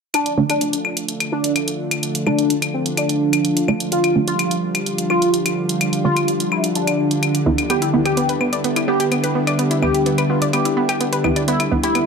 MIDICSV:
0, 0, Header, 1, 7, 480
1, 0, Start_track
1, 0, Tempo, 472441
1, 142, Time_signature, 4, 2, 24, 8
1, 12254, End_track
2, 0, Start_track
2, 0, Title_t, "Analog polysynth"
2, 0, Program_c, 0, 90
2, 142, Note_on_c, 0, 62, 97
2, 341, Note_off_c, 0, 62, 0
2, 503, Note_on_c, 0, 62, 92
2, 768, Note_off_c, 0, 62, 0
2, 1342, Note_on_c, 0, 62, 91
2, 1541, Note_off_c, 0, 62, 0
2, 2302, Note_on_c, 0, 62, 91
2, 2567, Note_off_c, 0, 62, 0
2, 2782, Note_on_c, 0, 60, 81
2, 2916, Note_off_c, 0, 60, 0
2, 3022, Note_on_c, 0, 62, 90
2, 3887, Note_off_c, 0, 62, 0
2, 3982, Note_on_c, 0, 65, 96
2, 4181, Note_off_c, 0, 65, 0
2, 4343, Note_on_c, 0, 65, 94
2, 4608, Note_off_c, 0, 65, 0
2, 5182, Note_on_c, 0, 65, 92
2, 5381, Note_off_c, 0, 65, 0
2, 6142, Note_on_c, 0, 65, 95
2, 6407, Note_off_c, 0, 65, 0
2, 6622, Note_on_c, 0, 64, 84
2, 6756, Note_off_c, 0, 64, 0
2, 6863, Note_on_c, 0, 62, 93
2, 7728, Note_off_c, 0, 62, 0
2, 7822, Note_on_c, 0, 67, 92
2, 8021, Note_off_c, 0, 67, 0
2, 8184, Note_on_c, 0, 67, 91
2, 8448, Note_off_c, 0, 67, 0
2, 9022, Note_on_c, 0, 67, 93
2, 9221, Note_off_c, 0, 67, 0
2, 9982, Note_on_c, 0, 67, 92
2, 10247, Note_off_c, 0, 67, 0
2, 10463, Note_on_c, 0, 65, 84
2, 10596, Note_off_c, 0, 65, 0
2, 10703, Note_on_c, 0, 67, 90
2, 11568, Note_off_c, 0, 67, 0
2, 11662, Note_on_c, 0, 64, 94
2, 11861, Note_off_c, 0, 64, 0
2, 12023, Note_on_c, 0, 64, 94
2, 12254, Note_off_c, 0, 64, 0
2, 12254, End_track
3, 0, Start_track
3, 0, Title_t, "Synth pluck"
3, 0, Program_c, 1, 84
3, 7822, Note_on_c, 1, 59, 80
3, 7918, Note_off_c, 1, 59, 0
3, 7944, Note_on_c, 1, 64, 75
3, 8006, Note_off_c, 1, 64, 0
3, 8062, Note_on_c, 1, 59, 75
3, 8126, Note_off_c, 1, 59, 0
3, 8184, Note_on_c, 1, 67, 77
3, 8246, Note_off_c, 1, 67, 0
3, 8302, Note_on_c, 1, 59, 80
3, 8341, Note_off_c, 1, 59, 0
3, 8424, Note_on_c, 1, 71, 74
3, 8517, Note_off_c, 1, 71, 0
3, 8543, Note_on_c, 1, 59, 72
3, 8606, Note_off_c, 1, 59, 0
3, 8664, Note_on_c, 1, 74, 74
3, 8757, Note_off_c, 1, 74, 0
3, 8782, Note_on_c, 1, 59, 79
3, 8821, Note_off_c, 1, 59, 0
3, 8904, Note_on_c, 1, 64, 71
3, 8997, Note_off_c, 1, 64, 0
3, 9022, Note_on_c, 1, 59, 96
3, 9060, Note_off_c, 1, 59, 0
3, 9143, Note_on_c, 1, 67, 97
3, 9181, Note_off_c, 1, 67, 0
3, 9262, Note_on_c, 1, 59, 79
3, 9300, Note_off_c, 1, 59, 0
3, 9383, Note_on_c, 1, 71, 75
3, 9477, Note_off_c, 1, 71, 0
3, 9502, Note_on_c, 1, 59, 76
3, 9540, Note_off_c, 1, 59, 0
3, 9623, Note_on_c, 1, 74, 77
3, 9686, Note_off_c, 1, 74, 0
3, 9741, Note_on_c, 1, 59, 83
3, 9838, Note_off_c, 1, 59, 0
3, 9863, Note_on_c, 1, 64, 75
3, 9926, Note_off_c, 1, 64, 0
3, 9981, Note_on_c, 1, 59, 73
3, 10046, Note_off_c, 1, 59, 0
3, 10103, Note_on_c, 1, 67, 75
3, 10166, Note_off_c, 1, 67, 0
3, 10222, Note_on_c, 1, 59, 81
3, 10260, Note_off_c, 1, 59, 0
3, 10343, Note_on_c, 1, 71, 77
3, 10437, Note_off_c, 1, 71, 0
3, 10462, Note_on_c, 1, 59, 73
3, 10526, Note_off_c, 1, 59, 0
3, 10584, Note_on_c, 1, 74, 75
3, 10677, Note_off_c, 1, 74, 0
3, 10702, Note_on_c, 1, 59, 82
3, 10740, Note_off_c, 1, 59, 0
3, 10824, Note_on_c, 1, 64, 70
3, 10917, Note_off_c, 1, 64, 0
3, 10942, Note_on_c, 1, 59, 92
3, 10980, Note_off_c, 1, 59, 0
3, 11064, Note_on_c, 1, 67, 99
3, 11101, Note_off_c, 1, 67, 0
3, 11183, Note_on_c, 1, 59, 82
3, 11221, Note_off_c, 1, 59, 0
3, 11304, Note_on_c, 1, 71, 77
3, 11397, Note_off_c, 1, 71, 0
3, 11422, Note_on_c, 1, 59, 76
3, 11461, Note_off_c, 1, 59, 0
3, 11544, Note_on_c, 1, 74, 74
3, 11606, Note_off_c, 1, 74, 0
3, 11662, Note_on_c, 1, 59, 83
3, 11758, Note_off_c, 1, 59, 0
3, 11784, Note_on_c, 1, 64, 73
3, 11846, Note_off_c, 1, 64, 0
3, 11903, Note_on_c, 1, 59, 75
3, 11967, Note_off_c, 1, 59, 0
3, 12024, Note_on_c, 1, 67, 79
3, 12086, Note_off_c, 1, 67, 0
3, 12142, Note_on_c, 1, 59, 83
3, 12181, Note_off_c, 1, 59, 0
3, 12254, End_track
4, 0, Start_track
4, 0, Title_t, "Analog synth pad"
4, 0, Program_c, 2, 89
4, 141, Note_on_c, 2, 50, 81
4, 141, Note_on_c, 2, 53, 75
4, 141, Note_on_c, 2, 57, 75
4, 141, Note_on_c, 2, 65, 91
4, 3943, Note_off_c, 2, 57, 0
4, 3981, Note_on_c, 2, 55, 75
4, 7781, Note_off_c, 2, 53, 0
4, 7781, Note_off_c, 2, 65, 0
4, 7783, Note_off_c, 2, 55, 0
4, 7822, Note_on_c, 2, 55, 75
4, 7822, Note_on_c, 2, 59, 72
4, 7822, Note_on_c, 2, 64, 89
4, 11624, Note_off_c, 2, 59, 0
4, 11662, Note_on_c, 2, 57, 77
4, 12254, Note_off_c, 2, 50, 0
4, 12254, Note_off_c, 2, 55, 0
4, 12254, Note_off_c, 2, 57, 0
4, 12254, Note_off_c, 2, 64, 0
4, 12254, End_track
5, 0, Start_track
5, 0, Title_t, "Synth stab"
5, 0, Program_c, 3, 62
5, 381, Note_on_c, 3, 50, 81
5, 381, Note_on_c, 3, 57, 75
5, 381, Note_on_c, 3, 62, 89
5, 2273, Note_off_c, 3, 50, 0
5, 2273, Note_off_c, 3, 57, 0
5, 2273, Note_off_c, 3, 62, 0
5, 2302, Note_on_c, 3, 50, 79
5, 2302, Note_on_c, 3, 57, 75
5, 2302, Note_on_c, 3, 62, 88
5, 3714, Note_off_c, 3, 50, 0
5, 3714, Note_off_c, 3, 57, 0
5, 3714, Note_off_c, 3, 62, 0
5, 3742, Note_on_c, 3, 50, 86
5, 3742, Note_on_c, 3, 57, 84
5, 3742, Note_on_c, 3, 62, 99
5, 4194, Note_off_c, 3, 50, 0
5, 4194, Note_off_c, 3, 57, 0
5, 4194, Note_off_c, 3, 62, 0
5, 4221, Note_on_c, 3, 50, 79
5, 4221, Note_on_c, 3, 57, 75
5, 4221, Note_on_c, 3, 62, 91
5, 6113, Note_off_c, 3, 50, 0
5, 6113, Note_off_c, 3, 57, 0
5, 6113, Note_off_c, 3, 62, 0
5, 6142, Note_on_c, 3, 50, 82
5, 6142, Note_on_c, 3, 57, 74
5, 6142, Note_on_c, 3, 62, 87
5, 7553, Note_off_c, 3, 62, 0
5, 7554, Note_off_c, 3, 50, 0
5, 7554, Note_off_c, 3, 57, 0
5, 7582, Note_on_c, 3, 38, 92
5, 7582, Note_on_c, 3, 52, 82
5, 7582, Note_on_c, 3, 59, 81
5, 7582, Note_on_c, 3, 64, 98
5, 8034, Note_off_c, 3, 38, 0
5, 8034, Note_off_c, 3, 52, 0
5, 8034, Note_off_c, 3, 59, 0
5, 8034, Note_off_c, 3, 64, 0
5, 8062, Note_on_c, 3, 38, 81
5, 8062, Note_on_c, 3, 52, 76
5, 8062, Note_on_c, 3, 59, 75
5, 8062, Note_on_c, 3, 64, 91
5, 9954, Note_off_c, 3, 38, 0
5, 9954, Note_off_c, 3, 52, 0
5, 9954, Note_off_c, 3, 59, 0
5, 9954, Note_off_c, 3, 64, 0
5, 9982, Note_on_c, 3, 38, 82
5, 9982, Note_on_c, 3, 52, 76
5, 9982, Note_on_c, 3, 59, 74
5, 9982, Note_on_c, 3, 64, 92
5, 11393, Note_off_c, 3, 38, 0
5, 11393, Note_off_c, 3, 59, 0
5, 11394, Note_off_c, 3, 52, 0
5, 11394, Note_off_c, 3, 64, 0
5, 11421, Note_on_c, 3, 38, 88
5, 11421, Note_on_c, 3, 59, 81
5, 11422, Note_on_c, 3, 52, 82
5, 11422, Note_on_c, 3, 64, 99
5, 11873, Note_off_c, 3, 38, 0
5, 11873, Note_off_c, 3, 52, 0
5, 11873, Note_off_c, 3, 59, 0
5, 11873, Note_off_c, 3, 64, 0
5, 11902, Note_on_c, 3, 38, 83
5, 11902, Note_on_c, 3, 52, 76
5, 11902, Note_on_c, 3, 59, 78
5, 11902, Note_on_c, 3, 64, 95
5, 12254, Note_off_c, 3, 38, 0
5, 12254, Note_off_c, 3, 52, 0
5, 12254, Note_off_c, 3, 59, 0
5, 12254, Note_off_c, 3, 64, 0
5, 12254, End_track
6, 0, Start_track
6, 0, Title_t, "Synth drone"
6, 0, Program_c, 4, 95
6, 141, Note_on_c, 4, 50, 73
6, 141, Note_on_c, 4, 62, 71
6, 12254, Note_off_c, 4, 50, 0
6, 12254, Note_off_c, 4, 62, 0
6, 12254, End_track
7, 0, Start_track
7, 0, Title_t, "Drums"
7, 142, Note_on_c, 9, 42, 53
7, 142, Note_on_c, 9, 75, 47
7, 244, Note_off_c, 9, 42, 0
7, 244, Note_off_c, 9, 75, 0
7, 264, Note_on_c, 9, 42, 49
7, 365, Note_off_c, 9, 42, 0
7, 503, Note_on_c, 9, 42, 51
7, 503, Note_on_c, 9, 75, 45
7, 605, Note_off_c, 9, 42, 0
7, 605, Note_off_c, 9, 75, 0
7, 622, Note_on_c, 9, 42, 52
7, 723, Note_off_c, 9, 42, 0
7, 744, Note_on_c, 9, 42, 53
7, 845, Note_off_c, 9, 42, 0
7, 862, Note_on_c, 9, 75, 47
7, 963, Note_off_c, 9, 75, 0
7, 983, Note_on_c, 9, 42, 51
7, 1085, Note_off_c, 9, 42, 0
7, 1102, Note_on_c, 9, 42, 52
7, 1203, Note_off_c, 9, 42, 0
7, 1223, Note_on_c, 9, 42, 51
7, 1223, Note_on_c, 9, 75, 45
7, 1325, Note_off_c, 9, 42, 0
7, 1325, Note_off_c, 9, 75, 0
7, 1464, Note_on_c, 9, 42, 51
7, 1565, Note_off_c, 9, 42, 0
7, 1582, Note_on_c, 9, 42, 53
7, 1582, Note_on_c, 9, 75, 44
7, 1684, Note_off_c, 9, 42, 0
7, 1684, Note_off_c, 9, 75, 0
7, 1704, Note_on_c, 9, 42, 52
7, 1805, Note_off_c, 9, 42, 0
7, 1944, Note_on_c, 9, 42, 54
7, 1944, Note_on_c, 9, 75, 45
7, 2046, Note_off_c, 9, 42, 0
7, 2046, Note_off_c, 9, 75, 0
7, 2062, Note_on_c, 9, 42, 55
7, 2164, Note_off_c, 9, 42, 0
7, 2184, Note_on_c, 9, 42, 50
7, 2285, Note_off_c, 9, 42, 0
7, 2302, Note_on_c, 9, 75, 44
7, 2403, Note_off_c, 9, 75, 0
7, 2424, Note_on_c, 9, 42, 51
7, 2525, Note_off_c, 9, 42, 0
7, 2542, Note_on_c, 9, 42, 50
7, 2644, Note_off_c, 9, 42, 0
7, 2664, Note_on_c, 9, 42, 51
7, 2664, Note_on_c, 9, 75, 47
7, 2765, Note_off_c, 9, 42, 0
7, 2765, Note_off_c, 9, 75, 0
7, 2904, Note_on_c, 9, 42, 50
7, 3005, Note_off_c, 9, 42, 0
7, 3022, Note_on_c, 9, 42, 51
7, 3022, Note_on_c, 9, 75, 44
7, 3123, Note_off_c, 9, 42, 0
7, 3123, Note_off_c, 9, 75, 0
7, 3143, Note_on_c, 9, 42, 52
7, 3245, Note_off_c, 9, 42, 0
7, 3384, Note_on_c, 9, 42, 52
7, 3384, Note_on_c, 9, 75, 47
7, 3485, Note_off_c, 9, 42, 0
7, 3485, Note_off_c, 9, 75, 0
7, 3502, Note_on_c, 9, 42, 52
7, 3603, Note_off_c, 9, 42, 0
7, 3624, Note_on_c, 9, 42, 50
7, 3725, Note_off_c, 9, 42, 0
7, 3742, Note_on_c, 9, 75, 44
7, 3844, Note_off_c, 9, 75, 0
7, 3864, Note_on_c, 9, 42, 51
7, 3965, Note_off_c, 9, 42, 0
7, 3982, Note_on_c, 9, 42, 52
7, 4084, Note_off_c, 9, 42, 0
7, 4104, Note_on_c, 9, 42, 48
7, 4104, Note_on_c, 9, 75, 47
7, 4205, Note_off_c, 9, 42, 0
7, 4205, Note_off_c, 9, 75, 0
7, 4344, Note_on_c, 9, 42, 49
7, 4445, Note_off_c, 9, 42, 0
7, 4462, Note_on_c, 9, 42, 49
7, 4462, Note_on_c, 9, 75, 46
7, 4564, Note_off_c, 9, 42, 0
7, 4564, Note_off_c, 9, 75, 0
7, 4584, Note_on_c, 9, 42, 50
7, 4685, Note_off_c, 9, 42, 0
7, 4824, Note_on_c, 9, 42, 48
7, 4824, Note_on_c, 9, 75, 45
7, 4925, Note_off_c, 9, 42, 0
7, 4925, Note_off_c, 9, 75, 0
7, 4942, Note_on_c, 9, 42, 48
7, 5044, Note_off_c, 9, 42, 0
7, 5064, Note_on_c, 9, 42, 50
7, 5165, Note_off_c, 9, 42, 0
7, 5182, Note_on_c, 9, 75, 47
7, 5284, Note_off_c, 9, 75, 0
7, 5304, Note_on_c, 9, 42, 50
7, 5405, Note_off_c, 9, 42, 0
7, 5422, Note_on_c, 9, 42, 50
7, 5524, Note_off_c, 9, 42, 0
7, 5544, Note_on_c, 9, 42, 51
7, 5544, Note_on_c, 9, 75, 45
7, 5646, Note_off_c, 9, 42, 0
7, 5646, Note_off_c, 9, 75, 0
7, 5784, Note_on_c, 9, 42, 52
7, 5885, Note_off_c, 9, 42, 0
7, 5902, Note_on_c, 9, 42, 48
7, 5902, Note_on_c, 9, 75, 50
7, 6004, Note_off_c, 9, 42, 0
7, 6004, Note_off_c, 9, 75, 0
7, 6024, Note_on_c, 9, 42, 47
7, 6125, Note_off_c, 9, 42, 0
7, 6264, Note_on_c, 9, 42, 50
7, 6264, Note_on_c, 9, 75, 48
7, 6365, Note_off_c, 9, 42, 0
7, 6365, Note_off_c, 9, 75, 0
7, 6382, Note_on_c, 9, 42, 48
7, 6484, Note_off_c, 9, 42, 0
7, 6504, Note_on_c, 9, 42, 50
7, 6605, Note_off_c, 9, 42, 0
7, 6622, Note_on_c, 9, 75, 50
7, 6724, Note_off_c, 9, 75, 0
7, 6744, Note_on_c, 9, 42, 47
7, 6846, Note_off_c, 9, 42, 0
7, 6862, Note_on_c, 9, 42, 48
7, 6964, Note_off_c, 9, 42, 0
7, 6984, Note_on_c, 9, 42, 50
7, 6984, Note_on_c, 9, 75, 48
7, 7086, Note_off_c, 9, 42, 0
7, 7086, Note_off_c, 9, 75, 0
7, 7224, Note_on_c, 9, 42, 48
7, 7326, Note_off_c, 9, 42, 0
7, 7343, Note_on_c, 9, 42, 49
7, 7343, Note_on_c, 9, 75, 51
7, 7444, Note_off_c, 9, 42, 0
7, 7444, Note_off_c, 9, 75, 0
7, 7464, Note_on_c, 9, 42, 47
7, 7566, Note_off_c, 9, 42, 0
7, 7704, Note_on_c, 9, 42, 49
7, 7704, Note_on_c, 9, 75, 51
7, 7806, Note_off_c, 9, 42, 0
7, 7806, Note_off_c, 9, 75, 0
7, 7823, Note_on_c, 9, 42, 51
7, 7823, Note_on_c, 9, 75, 52
7, 7924, Note_off_c, 9, 42, 0
7, 7924, Note_off_c, 9, 75, 0
7, 7945, Note_on_c, 9, 42, 46
7, 8046, Note_off_c, 9, 42, 0
7, 8184, Note_on_c, 9, 42, 48
7, 8184, Note_on_c, 9, 75, 51
7, 8286, Note_off_c, 9, 42, 0
7, 8286, Note_off_c, 9, 75, 0
7, 8302, Note_on_c, 9, 42, 47
7, 8404, Note_off_c, 9, 42, 0
7, 8424, Note_on_c, 9, 42, 49
7, 8525, Note_off_c, 9, 42, 0
7, 8542, Note_on_c, 9, 75, 51
7, 8643, Note_off_c, 9, 75, 0
7, 8664, Note_on_c, 9, 42, 49
7, 8765, Note_off_c, 9, 42, 0
7, 8782, Note_on_c, 9, 42, 50
7, 8883, Note_off_c, 9, 42, 0
7, 8903, Note_on_c, 9, 42, 50
7, 8903, Note_on_c, 9, 75, 51
7, 9005, Note_off_c, 9, 42, 0
7, 9005, Note_off_c, 9, 75, 0
7, 9143, Note_on_c, 9, 42, 49
7, 9245, Note_off_c, 9, 42, 0
7, 9262, Note_on_c, 9, 42, 50
7, 9262, Note_on_c, 9, 75, 51
7, 9364, Note_off_c, 9, 42, 0
7, 9364, Note_off_c, 9, 75, 0
7, 9384, Note_on_c, 9, 42, 47
7, 9485, Note_off_c, 9, 42, 0
7, 9624, Note_on_c, 9, 42, 49
7, 9624, Note_on_c, 9, 75, 52
7, 9726, Note_off_c, 9, 42, 0
7, 9726, Note_off_c, 9, 75, 0
7, 9742, Note_on_c, 9, 42, 53
7, 9844, Note_off_c, 9, 42, 0
7, 9864, Note_on_c, 9, 42, 50
7, 9965, Note_off_c, 9, 42, 0
7, 9983, Note_on_c, 9, 75, 52
7, 10084, Note_off_c, 9, 75, 0
7, 10104, Note_on_c, 9, 42, 50
7, 10206, Note_off_c, 9, 42, 0
7, 10222, Note_on_c, 9, 42, 50
7, 10324, Note_off_c, 9, 42, 0
7, 10344, Note_on_c, 9, 42, 51
7, 10344, Note_on_c, 9, 75, 52
7, 10445, Note_off_c, 9, 42, 0
7, 10445, Note_off_c, 9, 75, 0
7, 10584, Note_on_c, 9, 42, 51
7, 10685, Note_off_c, 9, 42, 0
7, 10702, Note_on_c, 9, 42, 51
7, 10702, Note_on_c, 9, 75, 50
7, 10803, Note_off_c, 9, 42, 0
7, 10803, Note_off_c, 9, 75, 0
7, 10824, Note_on_c, 9, 42, 52
7, 10925, Note_off_c, 9, 42, 0
7, 11064, Note_on_c, 9, 42, 53
7, 11064, Note_on_c, 9, 75, 50
7, 11165, Note_off_c, 9, 42, 0
7, 11165, Note_off_c, 9, 75, 0
7, 11182, Note_on_c, 9, 42, 51
7, 11283, Note_off_c, 9, 42, 0
7, 11304, Note_on_c, 9, 42, 51
7, 11405, Note_off_c, 9, 42, 0
7, 11423, Note_on_c, 9, 75, 50
7, 11524, Note_off_c, 9, 75, 0
7, 11544, Note_on_c, 9, 42, 50
7, 11646, Note_off_c, 9, 42, 0
7, 11662, Note_on_c, 9, 42, 53
7, 11764, Note_off_c, 9, 42, 0
7, 11784, Note_on_c, 9, 42, 52
7, 11784, Note_on_c, 9, 75, 48
7, 11886, Note_off_c, 9, 42, 0
7, 11886, Note_off_c, 9, 75, 0
7, 12024, Note_on_c, 9, 42, 53
7, 12126, Note_off_c, 9, 42, 0
7, 12142, Note_on_c, 9, 42, 52
7, 12142, Note_on_c, 9, 75, 50
7, 12244, Note_off_c, 9, 42, 0
7, 12244, Note_off_c, 9, 75, 0
7, 12254, End_track
0, 0, End_of_file